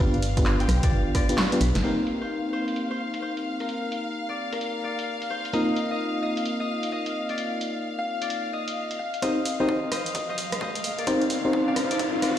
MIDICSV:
0, 0, Header, 1, 7, 480
1, 0, Start_track
1, 0, Key_signature, -3, "minor"
1, 0, Tempo, 461538
1, 1915, Time_signature, 4, 2, 24, 8
1, 12880, End_track
2, 0, Start_track
2, 0, Title_t, "Violin section"
2, 0, Program_c, 0, 48
2, 0, Note_on_c, 0, 77, 88
2, 1904, Note_off_c, 0, 77, 0
2, 1917, Note_on_c, 0, 77, 86
2, 9584, Note_off_c, 0, 77, 0
2, 9596, Note_on_c, 0, 77, 91
2, 12880, Note_off_c, 0, 77, 0
2, 12880, End_track
3, 0, Start_track
3, 0, Title_t, "Harp"
3, 0, Program_c, 1, 46
3, 0, Note_on_c, 1, 74, 92
3, 0, Note_on_c, 1, 77, 96
3, 626, Note_on_c, 1, 79, 90
3, 862, Note_off_c, 1, 74, 0
3, 866, Note_on_c, 1, 74, 90
3, 1192, Note_off_c, 1, 74, 0
3, 1196, Note_on_c, 1, 74, 94
3, 1248, Note_off_c, 1, 77, 0
3, 1673, Note_on_c, 1, 71, 89
3, 1912, Note_on_c, 1, 72, 88
3, 1974, Note_off_c, 1, 71, 0
3, 2241, Note_off_c, 1, 79, 0
3, 2298, Note_off_c, 1, 72, 0
3, 2303, Note_on_c, 1, 72, 89
3, 2624, Note_off_c, 1, 72, 0
3, 2629, Note_on_c, 1, 72, 94
3, 3018, Note_off_c, 1, 72, 0
3, 3022, Note_on_c, 1, 72, 88
3, 3117, Note_off_c, 1, 74, 0
3, 3346, Note_off_c, 1, 72, 0
3, 3350, Note_on_c, 1, 72, 87
3, 3745, Note_on_c, 1, 70, 84
3, 4462, Note_on_c, 1, 74, 86
3, 4702, Note_off_c, 1, 70, 0
3, 4706, Note_on_c, 1, 70, 90
3, 5029, Note_off_c, 1, 74, 0
3, 5033, Note_on_c, 1, 74, 81
3, 5409, Note_off_c, 1, 72, 0
3, 5515, Note_on_c, 1, 72, 88
3, 5754, Note_on_c, 1, 75, 93
3, 5817, Note_off_c, 1, 74, 0
3, 6140, Note_off_c, 1, 75, 0
3, 6144, Note_on_c, 1, 75, 88
3, 6469, Note_off_c, 1, 75, 0
3, 6473, Note_on_c, 1, 75, 90
3, 6859, Note_off_c, 1, 75, 0
3, 6863, Note_on_c, 1, 75, 92
3, 6912, Note_off_c, 1, 70, 0
3, 7192, Note_off_c, 1, 75, 0
3, 7197, Note_on_c, 1, 75, 91
3, 7574, Note_off_c, 1, 72, 0
3, 7586, Note_on_c, 1, 74, 86
3, 7648, Note_off_c, 1, 75, 0
3, 8305, Note_on_c, 1, 77, 86
3, 8541, Note_off_c, 1, 74, 0
3, 8545, Note_on_c, 1, 74, 86
3, 8871, Note_on_c, 1, 75, 86
3, 8934, Note_off_c, 1, 74, 0
3, 9347, Note_off_c, 1, 77, 0
3, 9351, Note_on_c, 1, 77, 88
3, 9589, Note_on_c, 1, 72, 69
3, 9592, Note_off_c, 1, 75, 0
3, 9597, Note_on_c, 1, 75, 91
3, 9978, Note_off_c, 1, 72, 0
3, 9982, Note_on_c, 1, 72, 70
3, 9984, Note_off_c, 1, 75, 0
3, 9988, Note_on_c, 1, 75, 88
3, 10309, Note_off_c, 1, 72, 0
3, 10312, Note_off_c, 1, 75, 0
3, 10313, Note_on_c, 1, 72, 74
3, 10316, Note_on_c, 1, 75, 94
3, 10698, Note_off_c, 1, 72, 0
3, 10703, Note_on_c, 1, 72, 77
3, 10707, Note_off_c, 1, 75, 0
3, 10711, Note_on_c, 1, 75, 96
3, 11026, Note_off_c, 1, 72, 0
3, 11030, Note_on_c, 1, 72, 71
3, 11033, Note_off_c, 1, 75, 0
3, 11038, Note_on_c, 1, 75, 89
3, 11082, Note_off_c, 1, 77, 0
3, 11422, Note_on_c, 1, 70, 70
3, 11425, Note_on_c, 1, 74, 86
3, 11488, Note_off_c, 1, 75, 0
3, 12136, Note_off_c, 1, 74, 0
3, 12140, Note_on_c, 1, 74, 75
3, 12146, Note_on_c, 1, 77, 84
3, 12375, Note_off_c, 1, 70, 0
3, 12379, Note_on_c, 1, 70, 71
3, 12381, Note_off_c, 1, 74, 0
3, 12385, Note_on_c, 1, 74, 89
3, 12709, Note_off_c, 1, 74, 0
3, 12713, Note_on_c, 1, 74, 72
3, 12714, Note_off_c, 1, 77, 0
3, 12718, Note_on_c, 1, 77, 88
3, 12880, Note_off_c, 1, 70, 0
3, 12880, Note_off_c, 1, 72, 0
3, 12880, Note_off_c, 1, 74, 0
3, 12880, Note_off_c, 1, 77, 0
3, 12880, End_track
4, 0, Start_track
4, 0, Title_t, "FM electric piano"
4, 0, Program_c, 2, 5
4, 0, Note_on_c, 2, 59, 100
4, 0, Note_on_c, 2, 62, 95
4, 0, Note_on_c, 2, 65, 96
4, 0, Note_on_c, 2, 67, 90
4, 0, Note_on_c, 2, 71, 111
4, 163, Note_off_c, 2, 59, 0
4, 163, Note_off_c, 2, 62, 0
4, 163, Note_off_c, 2, 65, 0
4, 163, Note_off_c, 2, 67, 0
4, 163, Note_off_c, 2, 71, 0
4, 385, Note_on_c, 2, 59, 82
4, 385, Note_on_c, 2, 62, 75
4, 386, Note_on_c, 2, 65, 79
4, 386, Note_on_c, 2, 67, 75
4, 386, Note_on_c, 2, 71, 93
4, 1315, Note_off_c, 2, 59, 0
4, 1315, Note_off_c, 2, 62, 0
4, 1315, Note_off_c, 2, 67, 0
4, 1315, Note_off_c, 2, 71, 0
4, 1316, Note_off_c, 2, 65, 0
4, 1344, Note_on_c, 2, 59, 76
4, 1344, Note_on_c, 2, 65, 71
4, 1344, Note_on_c, 2, 67, 73
4, 1344, Note_on_c, 2, 71, 82
4, 1345, Note_on_c, 2, 62, 72
4, 1463, Note_off_c, 2, 59, 0
4, 1463, Note_off_c, 2, 62, 0
4, 1463, Note_off_c, 2, 65, 0
4, 1463, Note_off_c, 2, 67, 0
4, 1463, Note_off_c, 2, 71, 0
4, 1584, Note_on_c, 2, 59, 78
4, 1585, Note_on_c, 2, 62, 74
4, 1585, Note_on_c, 2, 65, 74
4, 1585, Note_on_c, 2, 67, 73
4, 1585, Note_on_c, 2, 71, 83
4, 1703, Note_off_c, 2, 59, 0
4, 1703, Note_off_c, 2, 67, 0
4, 1703, Note_off_c, 2, 71, 0
4, 1704, Note_off_c, 2, 62, 0
4, 1704, Note_off_c, 2, 65, 0
4, 1913, Note_on_c, 2, 58, 78
4, 1913, Note_on_c, 2, 60, 72
4, 1913, Note_on_c, 2, 63, 71
4, 1913, Note_on_c, 2, 67, 71
4, 1913, Note_on_c, 2, 70, 85
4, 5732, Note_off_c, 2, 58, 0
4, 5732, Note_off_c, 2, 60, 0
4, 5732, Note_off_c, 2, 63, 0
4, 5733, Note_off_c, 2, 67, 0
4, 5733, Note_off_c, 2, 70, 0
4, 5755, Note_on_c, 2, 65, 75
4, 5755, Note_on_c, 2, 70, 88
4, 5756, Note_on_c, 2, 58, 82
4, 5756, Note_on_c, 2, 60, 71
4, 5756, Note_on_c, 2, 63, 74
4, 9334, Note_off_c, 2, 58, 0
4, 9334, Note_off_c, 2, 60, 0
4, 9334, Note_off_c, 2, 63, 0
4, 9334, Note_off_c, 2, 65, 0
4, 9334, Note_off_c, 2, 70, 0
4, 9592, Note_on_c, 2, 63, 73
4, 9592, Note_on_c, 2, 67, 72
4, 9592, Note_on_c, 2, 70, 74
4, 9592, Note_on_c, 2, 72, 91
4, 9593, Note_on_c, 2, 60, 83
4, 9762, Note_off_c, 2, 60, 0
4, 9762, Note_off_c, 2, 63, 0
4, 9762, Note_off_c, 2, 67, 0
4, 9762, Note_off_c, 2, 70, 0
4, 9762, Note_off_c, 2, 72, 0
4, 9985, Note_on_c, 2, 60, 95
4, 9985, Note_on_c, 2, 63, 89
4, 9985, Note_on_c, 2, 67, 92
4, 9985, Note_on_c, 2, 70, 89
4, 9985, Note_on_c, 2, 72, 107
4, 10103, Note_off_c, 2, 60, 0
4, 10103, Note_off_c, 2, 72, 0
4, 10104, Note_off_c, 2, 63, 0
4, 10104, Note_off_c, 2, 67, 0
4, 10104, Note_off_c, 2, 70, 0
4, 11513, Note_on_c, 2, 63, 95
4, 11513, Note_on_c, 2, 70, 91
4, 11514, Note_on_c, 2, 60, 97
4, 11514, Note_on_c, 2, 67, 89
4, 11514, Note_on_c, 2, 72, 111
4, 11682, Note_off_c, 2, 63, 0
4, 11682, Note_off_c, 2, 70, 0
4, 11683, Note_off_c, 2, 60, 0
4, 11683, Note_off_c, 2, 67, 0
4, 11683, Note_off_c, 2, 72, 0
4, 11906, Note_on_c, 2, 60, 80
4, 11906, Note_on_c, 2, 63, 76
4, 11906, Note_on_c, 2, 67, 75
4, 11906, Note_on_c, 2, 70, 76
4, 11906, Note_on_c, 2, 72, 92
4, 12880, Note_off_c, 2, 60, 0
4, 12880, Note_off_c, 2, 63, 0
4, 12880, Note_off_c, 2, 67, 0
4, 12880, Note_off_c, 2, 70, 0
4, 12880, Note_off_c, 2, 72, 0
4, 12880, End_track
5, 0, Start_track
5, 0, Title_t, "FM bass"
5, 0, Program_c, 3, 39
5, 0, Note_on_c, 3, 31, 104
5, 688, Note_off_c, 3, 31, 0
5, 712, Note_on_c, 3, 35, 101
5, 837, Note_off_c, 3, 35, 0
5, 954, Note_on_c, 3, 31, 89
5, 1078, Note_off_c, 3, 31, 0
5, 1674, Note_on_c, 3, 35, 93
5, 1797, Note_off_c, 3, 35, 0
5, 1827, Note_on_c, 3, 31, 94
5, 1899, Note_off_c, 3, 31, 0
5, 12880, End_track
6, 0, Start_track
6, 0, Title_t, "Riser"
6, 0, Program_c, 4, 103
6, 9593, Note_on_c, 4, 60, 80
6, 12880, Note_off_c, 4, 60, 0
6, 12880, End_track
7, 0, Start_track
7, 0, Title_t, "Drums"
7, 0, Note_on_c, 9, 36, 115
7, 99, Note_off_c, 9, 36, 0
7, 146, Note_on_c, 9, 42, 38
7, 234, Note_on_c, 9, 46, 111
7, 250, Note_off_c, 9, 42, 0
7, 338, Note_off_c, 9, 46, 0
7, 386, Note_on_c, 9, 36, 102
7, 386, Note_on_c, 9, 42, 69
7, 473, Note_on_c, 9, 39, 116
7, 490, Note_off_c, 9, 36, 0
7, 490, Note_off_c, 9, 42, 0
7, 577, Note_off_c, 9, 39, 0
7, 626, Note_on_c, 9, 42, 38
7, 715, Note_on_c, 9, 37, 71
7, 715, Note_on_c, 9, 46, 113
7, 730, Note_off_c, 9, 42, 0
7, 819, Note_off_c, 9, 37, 0
7, 819, Note_off_c, 9, 46, 0
7, 864, Note_on_c, 9, 42, 69
7, 866, Note_on_c, 9, 36, 102
7, 968, Note_off_c, 9, 42, 0
7, 970, Note_off_c, 9, 36, 0
7, 1194, Note_on_c, 9, 37, 66
7, 1194, Note_on_c, 9, 46, 106
7, 1195, Note_on_c, 9, 36, 56
7, 1298, Note_off_c, 9, 37, 0
7, 1298, Note_off_c, 9, 46, 0
7, 1299, Note_off_c, 9, 36, 0
7, 1344, Note_on_c, 9, 42, 70
7, 1431, Note_on_c, 9, 38, 113
7, 1431, Note_on_c, 9, 39, 119
7, 1448, Note_off_c, 9, 42, 0
7, 1535, Note_off_c, 9, 38, 0
7, 1535, Note_off_c, 9, 39, 0
7, 1584, Note_on_c, 9, 42, 56
7, 1672, Note_on_c, 9, 46, 116
7, 1688, Note_off_c, 9, 42, 0
7, 1776, Note_off_c, 9, 46, 0
7, 1822, Note_on_c, 9, 38, 82
7, 1822, Note_on_c, 9, 42, 71
7, 1910, Note_off_c, 9, 42, 0
7, 1910, Note_on_c, 9, 42, 61
7, 1926, Note_off_c, 9, 38, 0
7, 2014, Note_off_c, 9, 42, 0
7, 2150, Note_on_c, 9, 42, 60
7, 2254, Note_off_c, 9, 42, 0
7, 2785, Note_on_c, 9, 42, 65
7, 2873, Note_off_c, 9, 42, 0
7, 2873, Note_on_c, 9, 42, 62
7, 2977, Note_off_c, 9, 42, 0
7, 3264, Note_on_c, 9, 42, 64
7, 3368, Note_off_c, 9, 42, 0
7, 3506, Note_on_c, 9, 42, 52
7, 3610, Note_off_c, 9, 42, 0
7, 3746, Note_on_c, 9, 42, 35
7, 3835, Note_off_c, 9, 42, 0
7, 3835, Note_on_c, 9, 42, 61
7, 3939, Note_off_c, 9, 42, 0
7, 4076, Note_on_c, 9, 42, 61
7, 4180, Note_off_c, 9, 42, 0
7, 4707, Note_on_c, 9, 42, 65
7, 4795, Note_off_c, 9, 42, 0
7, 4795, Note_on_c, 9, 42, 59
7, 4899, Note_off_c, 9, 42, 0
7, 5187, Note_on_c, 9, 42, 61
7, 5291, Note_off_c, 9, 42, 0
7, 5427, Note_on_c, 9, 42, 48
7, 5531, Note_off_c, 9, 42, 0
7, 5668, Note_on_c, 9, 42, 36
7, 5756, Note_off_c, 9, 42, 0
7, 5756, Note_on_c, 9, 42, 57
7, 5860, Note_off_c, 9, 42, 0
7, 5995, Note_on_c, 9, 42, 59
7, 6099, Note_off_c, 9, 42, 0
7, 6626, Note_on_c, 9, 42, 64
7, 6713, Note_off_c, 9, 42, 0
7, 6713, Note_on_c, 9, 42, 61
7, 6817, Note_off_c, 9, 42, 0
7, 7104, Note_on_c, 9, 42, 60
7, 7208, Note_off_c, 9, 42, 0
7, 7345, Note_on_c, 9, 42, 52
7, 7449, Note_off_c, 9, 42, 0
7, 7584, Note_on_c, 9, 42, 35
7, 7674, Note_off_c, 9, 42, 0
7, 7674, Note_on_c, 9, 42, 65
7, 7778, Note_off_c, 9, 42, 0
7, 7915, Note_on_c, 9, 42, 64
7, 8019, Note_off_c, 9, 42, 0
7, 8546, Note_on_c, 9, 42, 65
7, 8633, Note_off_c, 9, 42, 0
7, 8633, Note_on_c, 9, 42, 61
7, 8737, Note_off_c, 9, 42, 0
7, 9024, Note_on_c, 9, 42, 64
7, 9128, Note_off_c, 9, 42, 0
7, 9264, Note_on_c, 9, 42, 49
7, 9368, Note_off_c, 9, 42, 0
7, 9505, Note_on_c, 9, 42, 37
7, 9593, Note_off_c, 9, 42, 0
7, 9593, Note_on_c, 9, 42, 62
7, 9594, Note_on_c, 9, 36, 97
7, 9697, Note_off_c, 9, 42, 0
7, 9698, Note_off_c, 9, 36, 0
7, 9833, Note_on_c, 9, 46, 107
7, 9937, Note_off_c, 9, 46, 0
7, 10074, Note_on_c, 9, 36, 93
7, 10178, Note_off_c, 9, 36, 0
7, 10313, Note_on_c, 9, 37, 68
7, 10313, Note_on_c, 9, 46, 108
7, 10417, Note_off_c, 9, 37, 0
7, 10417, Note_off_c, 9, 46, 0
7, 10465, Note_on_c, 9, 42, 67
7, 10554, Note_off_c, 9, 42, 0
7, 10554, Note_on_c, 9, 36, 101
7, 10554, Note_on_c, 9, 42, 66
7, 10658, Note_off_c, 9, 36, 0
7, 10658, Note_off_c, 9, 42, 0
7, 10794, Note_on_c, 9, 46, 104
7, 10898, Note_off_c, 9, 46, 0
7, 10945, Note_on_c, 9, 37, 72
7, 10945, Note_on_c, 9, 42, 67
7, 11034, Note_on_c, 9, 36, 97
7, 11049, Note_off_c, 9, 37, 0
7, 11049, Note_off_c, 9, 42, 0
7, 11138, Note_off_c, 9, 36, 0
7, 11185, Note_on_c, 9, 42, 52
7, 11274, Note_on_c, 9, 46, 109
7, 11289, Note_off_c, 9, 42, 0
7, 11378, Note_off_c, 9, 46, 0
7, 11425, Note_on_c, 9, 42, 38
7, 11513, Note_off_c, 9, 42, 0
7, 11513, Note_on_c, 9, 42, 65
7, 11514, Note_on_c, 9, 36, 98
7, 11617, Note_off_c, 9, 42, 0
7, 11618, Note_off_c, 9, 36, 0
7, 11664, Note_on_c, 9, 42, 35
7, 11752, Note_on_c, 9, 46, 105
7, 11768, Note_off_c, 9, 42, 0
7, 11856, Note_off_c, 9, 46, 0
7, 11994, Note_on_c, 9, 36, 89
7, 12098, Note_off_c, 9, 36, 0
7, 12233, Note_on_c, 9, 37, 69
7, 12233, Note_on_c, 9, 46, 104
7, 12337, Note_off_c, 9, 37, 0
7, 12337, Note_off_c, 9, 46, 0
7, 12386, Note_on_c, 9, 42, 65
7, 12474, Note_off_c, 9, 42, 0
7, 12474, Note_on_c, 9, 36, 97
7, 12474, Note_on_c, 9, 42, 63
7, 12578, Note_off_c, 9, 36, 0
7, 12578, Note_off_c, 9, 42, 0
7, 12713, Note_on_c, 9, 37, 66
7, 12713, Note_on_c, 9, 46, 102
7, 12817, Note_off_c, 9, 37, 0
7, 12817, Note_off_c, 9, 46, 0
7, 12880, End_track
0, 0, End_of_file